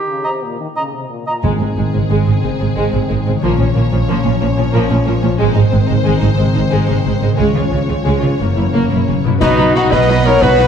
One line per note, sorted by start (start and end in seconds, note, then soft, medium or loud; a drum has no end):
0.00 1.09 D#3 soft
0.00 1.14 G3 soft
0.00 0.89 G4 medium
0.08 0.25 C#3 medium
0.24 0.42 C3 soft
0.24 0.30 D#5 soft
0.24 0.32 A#5 soft
0.43 0.60 A#2 soft
0.60 0.67 D#3 soft
0.76 0.93 C#3 soft
0.76 0.82 D#5 soft
0.76 0.84 A#5 soft
0.94 1.10 C3 soft
1.09 1.26 A#2 soft
1.27 1.44 A#2 soft
1.27 1.33 D#5 soft
1.27 1.35 A#5 soft
1.43 1.51 G#1 soft
1.43 1.50 G#2 soft
1.43 1.90 G#2 soft
1.43 3.44 G#2 soft
1.43 3.39 D#3 soft
1.43 1.59 G#3 soft
1.43 1.60 G#3 soft
1.43 3.39 C4 soft
1.43 3.39 G#4 soft
1.60 1.68 G#1 soft
1.60 1.67 G#2 soft
1.60 2.26 G#3 soft
1.60 1.67 G#3 soft
1.60 1.67 C4 soft
1.76 1.84 G#1 soft
1.76 1.83 G#2 soft
1.76 2.10 D#3 soft
1.76 1.84 G#3 soft
1.93 2.02 G#1 soft
1.93 2.00 G#2 soft
1.93 2.22 C#3 soft
1.93 2.01 G#3 soft
1.93 2.00 C4 soft
2.09 2.17 G#1 medium
2.09 2.17 G#2 soft
2.09 2.43 D#3 soft
2.09 2.25 G#3 soft
2.26 2.33 G#1 soft
2.26 2.34 G#2 soft
2.26 2.33 G#3 soft
2.26 2.60 G#3 soft
2.26 2.33 C4 soft
2.43 2.50 G#1 soft
2.43 2.50 G#2 soft
2.43 2.76 D#3 soft
2.43 2.50 G#3 soft
2.59 2.67 G#1 soft
2.59 2.67 G#2 soft
2.59 2.67 G#3 soft
2.59 3.25 G#3 soft
2.59 2.66 C4 soft
2.75 2.83 G#1 soft
2.75 2.83 G#2 soft
2.75 3.09 D#3 soft
2.75 2.91 G#3 medium
2.75 2.92 G#3 medium
2.92 2.99 G#1 soft
2.92 3.00 G#2 soft
2.92 3.21 C#3 soft
2.92 3.00 G#3 soft
2.92 2.99 C4 soft
3.09 3.16 G#1 soft
3.09 3.16 G#2 soft
3.09 3.44 D#3 soft
3.09 3.16 G#3 soft
3.26 3.33 G#1 soft
3.26 3.33 G#2 soft
3.26 3.33 G#3 soft
3.26 3.44 G#3 soft
3.26 3.33 C4 soft
3.41 3.49 A#1 medium
3.41 5.41 A#2 soft
3.41 3.49 A#2 medium
3.41 3.58 F3 medium
3.41 5.36 F3 medium
3.41 3.58 A#3 medium
3.41 5.40 C#4 medium
3.41 5.35 C#5 medium
3.59 3.66 A#1 soft
3.59 3.66 A#2 soft
3.59 4.23 F3 soft
3.59 3.66 F3 soft
3.59 3.66 C#4 soft
3.75 3.82 A#1 soft
3.75 3.82 A#2 soft
3.75 3.82 F3 soft
3.75 4.07 A#3 soft
3.75 3.82 A#3 soft
3.91 3.99 A#1 soft
3.91 3.98 A#2 soft
3.91 3.99 F3 medium
3.91 4.20 G#3 soft
3.91 3.98 C#4 soft
4.08 4.16 A#1 medium
4.08 4.15 A#2 medium
4.08 4.24 F3 soft
4.08 4.40 A#3 soft
4.08 4.24 A#3 medium
4.24 4.32 A#1 soft
4.24 4.31 A#2 medium
4.24 4.57 F3 soft
4.24 4.31 F3 soft
4.24 4.31 C#4 soft
4.41 4.48 A#1 soft
4.41 4.48 A#2 soft
4.41 4.48 F3 soft
4.41 4.73 A#3 soft
4.41 4.47 A#3 soft
4.57 4.65 A#1 soft
4.57 4.64 A#2 soft
4.57 4.63 F3 medium
4.57 5.23 F3 soft
4.57 4.65 C#4 soft
4.73 4.81 A#1 medium
4.73 4.80 A#2 medium
4.73 4.89 F3 medium
4.73 4.89 A#3 medium
4.73 5.06 A#3 soft
4.89 4.98 A#1 soft
4.89 4.97 A#2 soft
4.89 4.97 F3 soft
4.89 5.18 G#3 soft
4.89 4.96 C#4 soft
5.05 5.14 A#1 medium
5.05 5.14 A#2 soft
5.05 5.13 F3 medium
5.05 5.12 A#3 medium
5.05 5.42 A#3 soft
5.22 5.31 A#1 soft
5.22 5.29 A#2 soft
5.22 5.29 F3 soft
5.22 5.42 F3 soft
5.22 5.29 C#4 soft
5.39 5.47 G#1 medium
5.39 5.46 G#2 medium
5.39 7.40 G#2 medium
5.39 7.34 D#3 medium
5.39 5.55 G#3 medium
5.39 7.38 C4 medium
5.39 7.35 C5 medium
5.55 5.63 G#1 medium
5.55 5.62 G#2 soft
5.55 6.20 G#3 soft
5.55 5.63 G#3 soft
5.55 5.62 D#4 soft
5.71 5.80 G#1 soft
5.71 5.79 G#2 soft
5.71 6.04 D#3 soft
5.71 5.79 G#3 soft
5.71 5.78 C4 medium
5.87 5.96 G#1 soft
5.87 5.96 G#2 soft
5.87 6.18 C#3 soft
5.87 5.96 G#3 soft
5.87 5.94 D#4 soft
6.04 6.13 G#1 medium
6.04 6.12 G#2 medium
6.04 6.37 D#3 soft
6.04 6.20 G#3 medium
6.04 6.21 G#3 medium
6.19 6.29 G#1 soft
6.19 6.29 G#2 soft
6.19 6.54 G#3 soft
6.19 6.29 G#3 soft
6.19 6.27 D#4 soft
6.37 6.45 G#1 soft
6.37 6.45 G#2 soft
6.37 6.70 D#3 soft
6.37 6.46 G#3 soft
6.37 6.44 C4 soft
6.55 6.62 G#1 soft
6.55 6.62 G#2 soft
6.55 7.21 G#3 soft
6.55 6.63 G#3 soft
6.55 6.62 D#4 soft
6.71 6.78 G#1 medium
6.71 6.78 G#2 medium
6.71 7.05 D#3 soft
6.71 6.87 G#3 medium
6.71 6.88 G#3 medium
6.87 6.95 G#1 soft
6.87 6.95 G#2 soft
6.87 7.17 C#3 soft
6.87 6.96 G#3 medium
6.87 6.94 D#4 soft
7.04 7.12 G#1 soft
7.04 7.11 G#2 soft
7.04 7.40 D#3 soft
7.04 7.13 G#3 soft
7.04 7.11 C4 soft
7.21 7.28 G#1 soft
7.21 7.28 G#2 soft
7.21 7.55 G#3 soft
7.21 7.29 G#3 soft
7.21 7.28 D#4 soft
7.37 7.45 C#2 medium
7.37 7.45 C#3 medium
7.37 8.42 C#3 medium
7.37 8.38 F3 medium
7.37 7.53 G#3 soft
7.37 7.55 G#3 medium
7.37 8.40 C#4 medium
7.37 9.22 C#5 medium
7.54 7.62 C#2 soft
7.54 7.61 C#3 soft
7.54 7.63 G#3 soft
7.54 8.22 G#3 soft
7.54 7.62 F4 soft
7.70 7.79 C#2 soft
7.70 7.79 C#3 soft
7.70 7.79 G#3 soft
7.70 7.77 C#4 soft
7.70 8.05 C#4 soft
7.88 7.96 C#2 soft
7.88 7.96 C#3 soft
7.88 7.96 G#3 soft
7.88 8.18 C4 soft
7.88 7.95 F4 soft
8.04 8.13 C#2 medium
8.04 8.12 C#3 soft
8.04 8.21 G#3 soft
8.04 8.22 G#3 medium
8.04 9.44 C#4 soft
8.21 8.29 C#2 soft
8.21 8.30 C#3 soft
8.21 8.41 G#3 soft
8.21 8.31 G#3 soft
8.21 8.28 F4 soft
8.38 8.47 F#1 soft
8.38 8.47 F#2 soft
8.38 9.44 F#2 soft
8.38 9.26 E3 soft
8.38 9.24 A#3 soft
8.38 8.48 A#3 soft
8.38 8.46 C#4 soft
8.56 8.63 F#1 soft
8.56 8.64 F#2 soft
8.56 9.24 A#3 soft
8.56 8.64 A#3 soft
8.56 8.63 E4 soft
8.73 8.80 F#1 soft
8.73 8.81 F#2 soft
8.73 9.07 C#3 soft
8.73 8.89 A#3 medium
8.73 8.90 A#3 medium
8.91 8.98 F#1 soft
8.91 8.98 F#2 soft
8.91 9.20 B2 soft
8.91 8.98 A#3 soft
8.91 8.99 E4 soft
9.08 9.15 F#1 soft
9.08 9.15 F#2 soft
9.08 9.43 C#3 soft
9.08 9.15 A#3 soft
9.08 9.15 C#4 soft
9.24 9.31 F#1 soft
9.24 9.32 F#2 soft
9.24 10.67 B2 medium
9.24 9.43 A#3 soft
9.24 9.32 A#3 soft
9.24 9.33 E4 soft
9.29 10.67 B3 soft
9.33 10.67 F#4 medium
9.38 9.86 B1 medium
9.38 9.48 F#3 medium
9.38 9.73 B3 medium
9.38 9.73 D#4 loud
9.38 9.48 D#4 medium
9.38 10.67 B4 medium
9.38 9.49 B5 medium
9.38 concert bass drum medium
9.38 snare medium
9.38 crash medium
9.42 9.86 B2 medium
9.42 9.73 B3 medium
9.42 9.73 D#4 medium
9.42 9.93 F#4 medium
9.58 9.65 F#3 medium
9.58 9.65 D#4 medium
9.58 9.66 B5 medium
9.75 9.82 F#3 medium
9.75 9.92 D#4 medium
9.75 9.82 D#4 medium
9.75 9.94 D#4 medium
9.75 9.83 F#4 medium
9.75 9.92 F#4 medium
9.75 9.82 B5 medium
9.75 snare soft
9.91 10.36 B1 medium
9.91 10.36 B2 medium
9.91 9.98 F#3 medium
9.91 10.67 B3 medium
9.91 9.98 D#4 medium
9.91 10.26 B4 medium
9.91 10.24 B4 medium
9.91 10.25 D#5 medium
9.91 10.26 D#5 loud
9.91 9.99 B5 medium
9.91 concert bass drum medium
9.91 snare medium
10.08 10.15 F#3 medium
10.08 10.15 D#4 medium
10.08 10.16 B5 medium
10.24 10.32 F#3 medium
10.24 10.32 D#4 medium
10.24 10.44 A#4 medium
10.24 10.43 A#4 medium
10.24 10.42 C#5 loud
10.24 10.42 C#5 medium
10.24 10.32 B5 medium
10.41 10.67 B1 medium
10.41 10.67 B2 medium
10.41 10.48 F#3 medium
10.41 10.48 D#4 medium
10.41 10.67 F#4 medium
10.41 10.67 B4 medium
10.41 10.67 B4 loud
10.41 10.49 B5 medium
10.41 concert bass drum medium
10.41 snare medium
10.57 10.65 F#3 medium
10.57 10.65 D#4 medium
10.57 10.64 B5 medium
10.57 snare medium